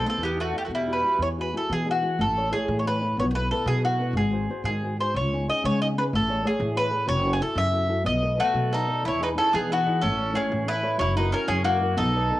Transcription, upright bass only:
0.18 0.52 E2 loud
0.68 1.02 E2 medium
1.19 1.52 E2 medium
1.70 2.20 E3 loud
2.19 2.51 A1 medium
2.68 3.19 A2 loud
3.17 3.49 B1 medium
3.66 4.15 B2 loud
4.13 4.46 G#1 medium
4.64 5.16 G#2 loud
5.14 5.46 C#2 loud
5.64 6.15 C#3 loud
6.13 6.44 A1 medium
6.60 7.09 A2 loud
7.08 7.39 F#1 loud
7.56 8.07 F#2 loud
8.05 8.37 B1 medium
8.54 9.07 B2 loud
9.06 9.37 E2 medium
9.54 10.04 E3 loud
10.03 10.34 A1 medium
10.52 11.02 A2 loud
11.00 11.32 F#1 medium
11.49 11.98 F#2 loud
11.97 12.29 B1 loud

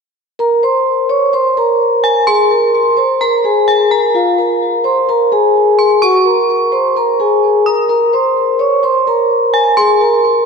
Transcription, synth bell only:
2.04 2.26 G#5 medium
2.27 3.17 C6 loud
3.21 3.65 A#5 medium
3.68 3.90 G#5 medium
3.91 4.13 A#5 medium
5.79 6.01 C6 medium
6.02 7.62 C#6 loud
7.66 7.88 D#6 medium
9.54 9.76 G#5 medium
9.77 10.46 C6 loud

